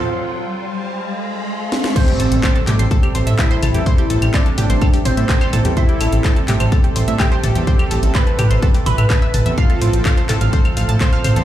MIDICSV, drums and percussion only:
0, 0, Header, 1, 2, 480
1, 0, Start_track
1, 0, Key_signature, 0, "minor"
1, 0, Tempo, 476190
1, 54, Time_signature, 4, 2, 24, 8
1, 11532, End_track
2, 0, Start_track
2, 0, Title_t, "Drums"
2, 1735, Note_on_c, 9, 38, 88
2, 1836, Note_off_c, 9, 38, 0
2, 1856, Note_on_c, 9, 38, 99
2, 1957, Note_off_c, 9, 38, 0
2, 1974, Note_on_c, 9, 42, 90
2, 1975, Note_on_c, 9, 36, 108
2, 1976, Note_off_c, 9, 42, 0
2, 1976, Note_on_c, 9, 42, 61
2, 1976, Note_on_c, 9, 49, 106
2, 2075, Note_off_c, 9, 36, 0
2, 2077, Note_off_c, 9, 42, 0
2, 2077, Note_off_c, 9, 49, 0
2, 2096, Note_on_c, 9, 42, 36
2, 2197, Note_off_c, 9, 42, 0
2, 2214, Note_on_c, 9, 42, 70
2, 2215, Note_on_c, 9, 46, 104
2, 2315, Note_off_c, 9, 42, 0
2, 2316, Note_off_c, 9, 46, 0
2, 2336, Note_on_c, 9, 42, 70
2, 2437, Note_off_c, 9, 42, 0
2, 2453, Note_on_c, 9, 38, 119
2, 2453, Note_on_c, 9, 42, 91
2, 2455, Note_on_c, 9, 36, 127
2, 2456, Note_off_c, 9, 42, 0
2, 2456, Note_on_c, 9, 39, 118
2, 2456, Note_on_c, 9, 42, 57
2, 2456, Note_on_c, 9, 75, 49
2, 2554, Note_off_c, 9, 38, 0
2, 2555, Note_off_c, 9, 36, 0
2, 2556, Note_off_c, 9, 39, 0
2, 2556, Note_off_c, 9, 42, 0
2, 2556, Note_off_c, 9, 75, 0
2, 2576, Note_on_c, 9, 42, 32
2, 2677, Note_off_c, 9, 42, 0
2, 2693, Note_on_c, 9, 42, 72
2, 2696, Note_on_c, 9, 39, 64
2, 2696, Note_on_c, 9, 45, 85
2, 2696, Note_on_c, 9, 46, 107
2, 2794, Note_off_c, 9, 42, 0
2, 2797, Note_off_c, 9, 39, 0
2, 2797, Note_off_c, 9, 45, 0
2, 2797, Note_off_c, 9, 46, 0
2, 2816, Note_on_c, 9, 42, 69
2, 2917, Note_off_c, 9, 42, 0
2, 2933, Note_on_c, 9, 42, 93
2, 2935, Note_off_c, 9, 42, 0
2, 2935, Note_on_c, 9, 36, 113
2, 2935, Note_on_c, 9, 42, 61
2, 3035, Note_off_c, 9, 36, 0
2, 3036, Note_off_c, 9, 42, 0
2, 3055, Note_on_c, 9, 42, 33
2, 3055, Note_on_c, 9, 75, 50
2, 3156, Note_off_c, 9, 42, 0
2, 3156, Note_off_c, 9, 75, 0
2, 3173, Note_on_c, 9, 42, 69
2, 3175, Note_on_c, 9, 46, 103
2, 3274, Note_off_c, 9, 42, 0
2, 3275, Note_off_c, 9, 46, 0
2, 3295, Note_on_c, 9, 42, 72
2, 3396, Note_off_c, 9, 42, 0
2, 3413, Note_on_c, 9, 38, 116
2, 3413, Note_on_c, 9, 46, 78
2, 3415, Note_on_c, 9, 36, 119
2, 3415, Note_on_c, 9, 39, 124
2, 3415, Note_on_c, 9, 42, 62
2, 3514, Note_off_c, 9, 38, 0
2, 3514, Note_off_c, 9, 46, 0
2, 3515, Note_off_c, 9, 36, 0
2, 3516, Note_off_c, 9, 39, 0
2, 3516, Note_off_c, 9, 42, 0
2, 3535, Note_on_c, 9, 42, 34
2, 3636, Note_off_c, 9, 42, 0
2, 3654, Note_on_c, 9, 42, 71
2, 3655, Note_on_c, 9, 45, 80
2, 3655, Note_on_c, 9, 46, 102
2, 3655, Note_on_c, 9, 75, 51
2, 3755, Note_off_c, 9, 42, 0
2, 3756, Note_off_c, 9, 45, 0
2, 3756, Note_off_c, 9, 46, 0
2, 3756, Note_off_c, 9, 75, 0
2, 3774, Note_on_c, 9, 42, 46
2, 3775, Note_off_c, 9, 42, 0
2, 3775, Note_on_c, 9, 42, 65
2, 3876, Note_off_c, 9, 42, 0
2, 3893, Note_on_c, 9, 42, 88
2, 3895, Note_off_c, 9, 42, 0
2, 3895, Note_on_c, 9, 36, 116
2, 3895, Note_on_c, 9, 42, 63
2, 3995, Note_off_c, 9, 36, 0
2, 3996, Note_off_c, 9, 42, 0
2, 4015, Note_on_c, 9, 42, 35
2, 4116, Note_off_c, 9, 42, 0
2, 4133, Note_on_c, 9, 42, 69
2, 4134, Note_on_c, 9, 46, 113
2, 4234, Note_off_c, 9, 42, 0
2, 4235, Note_off_c, 9, 46, 0
2, 4254, Note_on_c, 9, 38, 38
2, 4255, Note_on_c, 9, 42, 68
2, 4255, Note_on_c, 9, 75, 53
2, 4354, Note_off_c, 9, 38, 0
2, 4355, Note_off_c, 9, 42, 0
2, 4355, Note_off_c, 9, 75, 0
2, 4373, Note_on_c, 9, 38, 120
2, 4373, Note_on_c, 9, 42, 92
2, 4374, Note_off_c, 9, 42, 0
2, 4374, Note_on_c, 9, 39, 127
2, 4374, Note_on_c, 9, 42, 52
2, 4375, Note_on_c, 9, 36, 126
2, 4474, Note_off_c, 9, 38, 0
2, 4475, Note_off_c, 9, 39, 0
2, 4475, Note_off_c, 9, 42, 0
2, 4476, Note_off_c, 9, 36, 0
2, 4495, Note_on_c, 9, 42, 33
2, 4596, Note_off_c, 9, 42, 0
2, 4614, Note_on_c, 9, 42, 68
2, 4615, Note_on_c, 9, 45, 81
2, 4615, Note_on_c, 9, 46, 113
2, 4714, Note_off_c, 9, 42, 0
2, 4716, Note_off_c, 9, 45, 0
2, 4716, Note_off_c, 9, 46, 0
2, 4736, Note_on_c, 9, 42, 67
2, 4836, Note_off_c, 9, 42, 0
2, 4853, Note_on_c, 9, 42, 95
2, 4855, Note_off_c, 9, 42, 0
2, 4855, Note_on_c, 9, 36, 123
2, 4855, Note_on_c, 9, 42, 58
2, 4855, Note_on_c, 9, 75, 53
2, 4956, Note_off_c, 9, 36, 0
2, 4956, Note_off_c, 9, 42, 0
2, 4956, Note_off_c, 9, 75, 0
2, 4974, Note_on_c, 9, 42, 43
2, 4975, Note_on_c, 9, 46, 62
2, 5074, Note_off_c, 9, 42, 0
2, 5075, Note_off_c, 9, 46, 0
2, 5093, Note_on_c, 9, 42, 71
2, 5095, Note_on_c, 9, 45, 89
2, 5095, Note_on_c, 9, 46, 109
2, 5194, Note_off_c, 9, 42, 0
2, 5196, Note_off_c, 9, 45, 0
2, 5196, Note_off_c, 9, 46, 0
2, 5215, Note_on_c, 9, 42, 64
2, 5316, Note_off_c, 9, 42, 0
2, 5334, Note_on_c, 9, 38, 115
2, 5334, Note_on_c, 9, 42, 91
2, 5335, Note_off_c, 9, 42, 0
2, 5335, Note_on_c, 9, 36, 125
2, 5335, Note_on_c, 9, 39, 127
2, 5335, Note_on_c, 9, 42, 58
2, 5434, Note_off_c, 9, 38, 0
2, 5436, Note_off_c, 9, 36, 0
2, 5436, Note_off_c, 9, 39, 0
2, 5436, Note_off_c, 9, 42, 0
2, 5455, Note_on_c, 9, 42, 33
2, 5455, Note_on_c, 9, 75, 50
2, 5556, Note_off_c, 9, 42, 0
2, 5556, Note_off_c, 9, 75, 0
2, 5573, Note_on_c, 9, 42, 70
2, 5575, Note_on_c, 9, 45, 76
2, 5575, Note_on_c, 9, 46, 113
2, 5674, Note_off_c, 9, 42, 0
2, 5676, Note_off_c, 9, 45, 0
2, 5676, Note_off_c, 9, 46, 0
2, 5694, Note_on_c, 9, 42, 44
2, 5695, Note_off_c, 9, 42, 0
2, 5695, Note_on_c, 9, 42, 66
2, 5796, Note_off_c, 9, 42, 0
2, 5814, Note_on_c, 9, 42, 58
2, 5815, Note_on_c, 9, 36, 115
2, 5915, Note_off_c, 9, 42, 0
2, 5916, Note_off_c, 9, 36, 0
2, 5935, Note_on_c, 9, 42, 33
2, 6036, Note_off_c, 9, 42, 0
2, 6054, Note_on_c, 9, 42, 69
2, 6054, Note_on_c, 9, 46, 108
2, 6054, Note_on_c, 9, 75, 52
2, 6155, Note_off_c, 9, 42, 0
2, 6155, Note_off_c, 9, 46, 0
2, 6155, Note_off_c, 9, 75, 0
2, 6174, Note_on_c, 9, 42, 67
2, 6275, Note_off_c, 9, 42, 0
2, 6294, Note_on_c, 9, 39, 119
2, 6294, Note_on_c, 9, 42, 53
2, 6295, Note_off_c, 9, 42, 0
2, 6295, Note_on_c, 9, 36, 126
2, 6295, Note_on_c, 9, 38, 117
2, 6295, Note_on_c, 9, 42, 94
2, 6395, Note_off_c, 9, 39, 0
2, 6396, Note_off_c, 9, 36, 0
2, 6396, Note_off_c, 9, 38, 0
2, 6396, Note_off_c, 9, 42, 0
2, 6414, Note_on_c, 9, 42, 31
2, 6515, Note_off_c, 9, 42, 0
2, 6534, Note_on_c, 9, 39, 63
2, 6534, Note_on_c, 9, 45, 81
2, 6534, Note_on_c, 9, 46, 116
2, 6535, Note_on_c, 9, 42, 71
2, 6635, Note_off_c, 9, 39, 0
2, 6635, Note_off_c, 9, 45, 0
2, 6635, Note_off_c, 9, 46, 0
2, 6636, Note_off_c, 9, 42, 0
2, 6655, Note_on_c, 9, 42, 67
2, 6655, Note_on_c, 9, 75, 49
2, 6755, Note_off_c, 9, 42, 0
2, 6755, Note_off_c, 9, 75, 0
2, 6774, Note_on_c, 9, 42, 55
2, 6775, Note_off_c, 9, 42, 0
2, 6775, Note_on_c, 9, 36, 126
2, 6775, Note_on_c, 9, 42, 95
2, 6875, Note_off_c, 9, 36, 0
2, 6876, Note_off_c, 9, 42, 0
2, 6894, Note_on_c, 9, 42, 31
2, 6995, Note_off_c, 9, 42, 0
2, 7014, Note_on_c, 9, 46, 113
2, 7015, Note_on_c, 9, 42, 71
2, 7115, Note_off_c, 9, 42, 0
2, 7115, Note_off_c, 9, 46, 0
2, 7134, Note_on_c, 9, 42, 66
2, 7235, Note_off_c, 9, 42, 0
2, 7254, Note_on_c, 9, 39, 127
2, 7254, Note_on_c, 9, 42, 57
2, 7254, Note_on_c, 9, 75, 55
2, 7255, Note_on_c, 9, 36, 124
2, 7255, Note_on_c, 9, 38, 109
2, 7255, Note_on_c, 9, 46, 79
2, 7355, Note_off_c, 9, 36, 0
2, 7355, Note_off_c, 9, 38, 0
2, 7355, Note_off_c, 9, 39, 0
2, 7355, Note_off_c, 9, 42, 0
2, 7355, Note_off_c, 9, 46, 0
2, 7355, Note_off_c, 9, 75, 0
2, 7375, Note_on_c, 9, 42, 31
2, 7476, Note_off_c, 9, 42, 0
2, 7494, Note_on_c, 9, 42, 73
2, 7495, Note_on_c, 9, 45, 73
2, 7495, Note_on_c, 9, 46, 115
2, 7595, Note_off_c, 9, 42, 0
2, 7596, Note_off_c, 9, 45, 0
2, 7596, Note_off_c, 9, 46, 0
2, 7615, Note_on_c, 9, 42, 62
2, 7716, Note_off_c, 9, 42, 0
2, 7734, Note_on_c, 9, 42, 54
2, 7735, Note_on_c, 9, 36, 113
2, 7835, Note_off_c, 9, 36, 0
2, 7835, Note_off_c, 9, 42, 0
2, 7855, Note_on_c, 9, 42, 34
2, 7855, Note_on_c, 9, 75, 57
2, 7956, Note_off_c, 9, 42, 0
2, 7956, Note_off_c, 9, 75, 0
2, 7974, Note_on_c, 9, 42, 70
2, 7974, Note_on_c, 9, 46, 109
2, 8074, Note_off_c, 9, 46, 0
2, 8075, Note_off_c, 9, 42, 0
2, 8094, Note_on_c, 9, 42, 64
2, 8095, Note_on_c, 9, 38, 39
2, 8194, Note_off_c, 9, 42, 0
2, 8196, Note_off_c, 9, 38, 0
2, 8214, Note_on_c, 9, 38, 118
2, 8214, Note_on_c, 9, 39, 113
2, 8214, Note_on_c, 9, 42, 53
2, 8215, Note_on_c, 9, 36, 127
2, 8315, Note_off_c, 9, 36, 0
2, 8315, Note_off_c, 9, 38, 0
2, 8315, Note_off_c, 9, 39, 0
2, 8315, Note_off_c, 9, 42, 0
2, 8335, Note_on_c, 9, 42, 33
2, 8435, Note_off_c, 9, 42, 0
2, 8454, Note_on_c, 9, 42, 68
2, 8454, Note_on_c, 9, 45, 86
2, 8454, Note_on_c, 9, 46, 115
2, 8454, Note_on_c, 9, 75, 56
2, 8555, Note_off_c, 9, 42, 0
2, 8555, Note_off_c, 9, 45, 0
2, 8555, Note_off_c, 9, 46, 0
2, 8555, Note_off_c, 9, 75, 0
2, 8574, Note_on_c, 9, 42, 65
2, 8675, Note_off_c, 9, 42, 0
2, 8694, Note_on_c, 9, 42, 54
2, 8695, Note_on_c, 9, 36, 126
2, 8795, Note_off_c, 9, 42, 0
2, 8796, Note_off_c, 9, 36, 0
2, 8814, Note_on_c, 9, 46, 60
2, 8815, Note_on_c, 9, 42, 46
2, 8915, Note_off_c, 9, 46, 0
2, 8916, Note_off_c, 9, 42, 0
2, 8934, Note_on_c, 9, 45, 89
2, 8934, Note_on_c, 9, 46, 109
2, 8935, Note_on_c, 9, 42, 71
2, 9035, Note_off_c, 9, 42, 0
2, 9035, Note_off_c, 9, 45, 0
2, 9035, Note_off_c, 9, 46, 0
2, 9054, Note_on_c, 9, 42, 66
2, 9054, Note_on_c, 9, 75, 51
2, 9155, Note_off_c, 9, 42, 0
2, 9155, Note_off_c, 9, 75, 0
2, 9174, Note_on_c, 9, 38, 113
2, 9174, Note_on_c, 9, 39, 121
2, 9174, Note_on_c, 9, 42, 91
2, 9175, Note_on_c, 9, 36, 127
2, 9275, Note_off_c, 9, 38, 0
2, 9275, Note_off_c, 9, 39, 0
2, 9275, Note_off_c, 9, 42, 0
2, 9276, Note_off_c, 9, 36, 0
2, 9294, Note_on_c, 9, 42, 30
2, 9395, Note_off_c, 9, 42, 0
2, 9414, Note_on_c, 9, 42, 71
2, 9414, Note_on_c, 9, 45, 80
2, 9414, Note_on_c, 9, 46, 110
2, 9515, Note_off_c, 9, 42, 0
2, 9515, Note_off_c, 9, 45, 0
2, 9515, Note_off_c, 9, 46, 0
2, 9534, Note_on_c, 9, 42, 63
2, 9635, Note_off_c, 9, 42, 0
2, 9654, Note_on_c, 9, 42, 90
2, 9655, Note_on_c, 9, 36, 121
2, 9755, Note_off_c, 9, 36, 0
2, 9755, Note_off_c, 9, 42, 0
2, 9774, Note_on_c, 9, 42, 32
2, 9875, Note_off_c, 9, 42, 0
2, 9894, Note_on_c, 9, 42, 72
2, 9894, Note_on_c, 9, 46, 111
2, 9995, Note_off_c, 9, 42, 0
2, 9995, Note_off_c, 9, 46, 0
2, 10014, Note_on_c, 9, 42, 66
2, 10114, Note_off_c, 9, 42, 0
2, 10134, Note_on_c, 9, 38, 122
2, 10134, Note_on_c, 9, 39, 116
2, 10134, Note_on_c, 9, 42, 93
2, 10134, Note_on_c, 9, 75, 52
2, 10135, Note_on_c, 9, 36, 120
2, 10234, Note_off_c, 9, 39, 0
2, 10234, Note_off_c, 9, 75, 0
2, 10235, Note_off_c, 9, 38, 0
2, 10235, Note_off_c, 9, 42, 0
2, 10236, Note_off_c, 9, 36, 0
2, 10254, Note_on_c, 9, 42, 31
2, 10355, Note_off_c, 9, 42, 0
2, 10374, Note_on_c, 9, 39, 64
2, 10374, Note_on_c, 9, 42, 70
2, 10374, Note_on_c, 9, 45, 83
2, 10374, Note_on_c, 9, 46, 113
2, 10475, Note_off_c, 9, 39, 0
2, 10475, Note_off_c, 9, 42, 0
2, 10475, Note_off_c, 9, 45, 0
2, 10475, Note_off_c, 9, 46, 0
2, 10494, Note_on_c, 9, 42, 65
2, 10595, Note_off_c, 9, 42, 0
2, 10614, Note_on_c, 9, 42, 92
2, 10615, Note_on_c, 9, 36, 117
2, 10715, Note_off_c, 9, 36, 0
2, 10715, Note_off_c, 9, 42, 0
2, 10735, Note_on_c, 9, 42, 32
2, 10735, Note_on_c, 9, 75, 55
2, 10836, Note_off_c, 9, 42, 0
2, 10836, Note_off_c, 9, 75, 0
2, 10854, Note_on_c, 9, 42, 73
2, 10855, Note_on_c, 9, 46, 105
2, 10955, Note_off_c, 9, 42, 0
2, 10955, Note_off_c, 9, 46, 0
2, 10975, Note_on_c, 9, 42, 61
2, 11076, Note_off_c, 9, 42, 0
2, 11094, Note_on_c, 9, 39, 119
2, 11094, Note_on_c, 9, 42, 56
2, 11095, Note_on_c, 9, 36, 121
2, 11095, Note_on_c, 9, 38, 119
2, 11095, Note_on_c, 9, 46, 82
2, 11195, Note_off_c, 9, 36, 0
2, 11195, Note_off_c, 9, 38, 0
2, 11195, Note_off_c, 9, 39, 0
2, 11195, Note_off_c, 9, 42, 0
2, 11195, Note_off_c, 9, 46, 0
2, 11215, Note_on_c, 9, 42, 32
2, 11316, Note_off_c, 9, 42, 0
2, 11334, Note_on_c, 9, 42, 71
2, 11335, Note_on_c, 9, 45, 80
2, 11335, Note_on_c, 9, 46, 108
2, 11335, Note_on_c, 9, 75, 55
2, 11435, Note_off_c, 9, 42, 0
2, 11435, Note_off_c, 9, 45, 0
2, 11435, Note_off_c, 9, 46, 0
2, 11435, Note_off_c, 9, 75, 0
2, 11454, Note_on_c, 9, 42, 64
2, 11455, Note_off_c, 9, 42, 0
2, 11455, Note_on_c, 9, 42, 46
2, 11532, Note_off_c, 9, 42, 0
2, 11532, End_track
0, 0, End_of_file